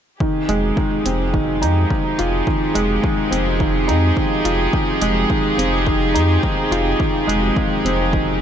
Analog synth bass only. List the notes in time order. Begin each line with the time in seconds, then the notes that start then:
0.49 F1
1.05 F1
1.62 F2
2.19 F1
2.75 F1
3.32 F1
3.89 F2
4.45 F1
5.02 F1
5.58 F1
6.15 F2
6.71 F1
7.28 F1
7.84 F1